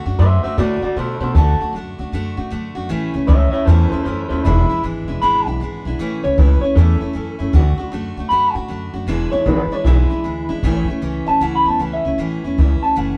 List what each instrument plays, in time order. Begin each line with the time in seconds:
0.06 upright bass F#2, steel-string acoustic guitar A3 D4 F#4
0.19 upright bass F#2, steel-string acoustic guitar D3 A3 D4 F#4, clean electric guitar C5 E5
0.43 steel-string acoustic guitar A3 D4 F#4, clean electric guitar C5 E5, muted upright bass stroke
0.57 upright bass A2, steel-string acoustic guitar D3 A3 D4 F#4, clean electric guitar F#4 D5
0.82 steel-string acoustic guitar A3 D4 F#4, clean electric guitar F#4 D5, muted upright bass stroke
0.96 upright bass B2, steel-string acoustic guitar D3 A3 D4 F#4, clean electric guitar A4 C5
1.20 upright bass B2, steel-string acoustic guitar A3 D4 F#4, clean electric guitar A4 C5
1.35 upright bass D2, steel-string acoustic guitar D3 A3 D4 F#4, clean electric guitar A4
1.60 steel-string acoustic guitar A3 D4 F#4, muted upright bass stroke
1.73 upright bass F#2, steel-string acoustic guitar D3 A3 D4
1.78 steel-string acoustic guitar F#4
1.98 upright bass D2, steel-string acoustic guitar A3 D4 F#4
2.12 upright bass F#2, steel-string acoustic guitar D3 A3 D4 F#4
2.37 upright bass A2, steel-string acoustic guitar A3 D4 F#4
2.50 upright bass F#2, steel-string acoustic guitar D3 A3 D4 F#4
2.75 upright bass F#2, steel-string acoustic guitar A3 D4 F#4
2.89 upright bass A1, steel-string acoustic guitar A2 E3 A3 C#4 E4
3.14 upright bass C#2, steel-string acoustic guitar A3 C#4 E4
3.27 upright bass C#2, steel-string acoustic guitar E3 A3 C#4 E4, clean electric guitar C#5 E5
3.51 steel-string acoustic guitar C#4 E4, clean electric guitar C#5 E5, muted upright bass stroke
3.55 steel-string acoustic guitar A3
3.65 upright bass E2, steel-string acoustic guitar A2 E3 A3 C#4, clean electric guitar A4 C5
3.69 steel-string acoustic guitar E4
3.89 steel-string acoustic guitar E4, clean electric guitar A4 C5, muted upright bass stroke
3.93 steel-string acoustic guitar A3 C#4
4.04 upright bass F#2, steel-string acoustic guitar E3 A3 C#4, clean electric guitar A4 C5
4.08 steel-string acoustic guitar E4
4.29 upright bass D#2, steel-string acoustic guitar C#4 E4, clean electric guitar A4 C5
4.33 steel-string acoustic guitar A3
4.44 upright bass E1, steel-string acoustic guitar E2 B2 E3 G#3 D4 E4, clean electric guitar E4
4.69 steel-string acoustic guitar E3 G#3 D4 E4, muted upright bass stroke
4.83 upright bass G#1, steel-string acoustic guitar E3 G#3 D4 E4
5.08 upright bass E1, steel-string acoustic guitar E3 G#3 D4 E4
5.22 upright bass G#1, steel-string acoustic guitar E2 B2 E3 G#3 D4 E4, clean electric guitar B5
5.46 upright bass B1, steel-string acoustic guitar E3 G#3 D4 E4, clean electric guitar F#5
5.60 upright bass G#1, steel-string acoustic guitar E3 G#3 D4 E4
5.85 upright bass B1, steel-string acoustic guitar E3 G#3 D4 E4
5.99 upright bass A1, steel-string acoustic guitar A2 E3 A3 C#4 E4
6.24 upright bass C#2, steel-string acoustic guitar A3 C#4 E4, clean electric guitar C#5
6.37 upright bass C#2, steel-string acoustic guitar E3 A3 C#4 E4, clean electric guitar B4
6.61 steel-string acoustic guitar C#4 E4, clean electric guitar C#5, muted upright bass stroke
6.66 steel-string acoustic guitar A3
6.75 upright bass E2, steel-string acoustic guitar A2 E3 A3 C#4 E4, clean electric guitar A4
7.01 steel-string acoustic guitar A3 C#4 E4, muted upright bass stroke
7.13 upright bass F#2, steel-string acoustic guitar E3 A3 C#4 E4
7.39 upright bass F#2, steel-string acoustic guitar A3 C#4 E4
7.53 upright bass D2, steel-string acoustic guitar D3 A3 D4 F#4
7.77 steel-string acoustic guitar A3 D4 F#4, muted upright bass stroke
7.92 upright bass F#2, steel-string acoustic guitar D3 A3 D4 F#4
8.17 upright bass D2, steel-string acoustic guitar A3 D4 F#4
8.29 upright bass F#2, steel-string acoustic guitar D3 A3 D4 F#4, clean electric guitar B5
8.54 upright bass A2, steel-string acoustic guitar D4 F#4, clean electric guitar F#5
8.58 steel-string acoustic guitar A3
8.68 upright bass F#2, steel-string acoustic guitar D3 A3 D4 F#4
8.94 upright bass F#2, steel-string acoustic guitar A3 D4 F#4
9.07 upright bass E1, steel-string acoustic guitar E2 B2 E3 G#3 D4 E4
9.32 upright bass G#1, steel-string acoustic guitar E3 G#3 D4 E4, clean electric guitar C#5
9.46 upright bass G#1, steel-string acoustic guitar E3 G#3 D4 E4, clean electric guitar B4
9.71 steel-string acoustic guitar E3 G#3 D4 E4, clean electric guitar C#5, muted upright bass stroke
9.84 upright bass B1, steel-string acoustic guitar E2 B2 E3 G#3 D4 E4, clean electric guitar E4
10.10 steel-string acoustic guitar E3 G#3 D4 E4, muted upright bass stroke
10.24 upright bass D2, steel-string acoustic guitar E3 G#3 D4 E4
10.49 upright bass G#1, steel-string acoustic guitar E3 G#3 D4 E4
10.63 upright bass A1, steel-string acoustic guitar A2 E3 A3 C#4 E4
10.88 steel-string acoustic guitar A3 C#4 E4, muted upright bass stroke
11.02 upright bass C#2, steel-string acoustic guitar E3 A3 C#4 E4
11.26 upright bass A1, steel-string acoustic guitar A3 C#4 E4, clean electric guitar A5
11.40 upright bass C#2, steel-string acoustic guitar A2 E3 A3 C#4 E4, clean electric guitar F#5
11.55 clean electric guitar B5
11.65 upright bass E2, steel-string acoustic guitar A3 C#4 E4, clean electric guitar A5
11.79 upright bass C#2, steel-string acoustic guitar E3 A3 C#4 E4, clean electric guitar F#5
11.93 clean electric guitar E5
12.05 upright bass C#2, steel-string acoustic guitar A3 C#4 E4
12.18 upright bass A1, steel-string acoustic guitar A2 E3 A3 C#4 E4
12.44 upright bass E2, steel-string acoustic guitar A3 C#4 E4
12.58 upright bass C#2, steel-string acoustic guitar E3 A3 C#4 E4
12.82 steel-string acoustic guitar A3 C#4 E4, clean electric guitar A5, muted upright bass stroke
12.96 upright bass F#1, steel-string acoustic guitar A2 E3 A3 C#4 E4, clean electric guitar F#5